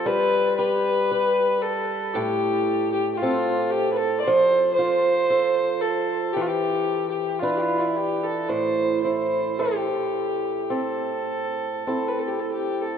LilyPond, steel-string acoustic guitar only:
\new Staff \with { instrumentName = "Steel-string acoustic guitar" } { \time 4/4 \key a \minor \tempo 4 = 56 g8 g'8 b'4 a,4 <c' a'>4 | f8 f'8 a'4 e4 <d' e' b'>4 | a,8 e'8 a'4 c'4 <c' e' a'>4 | }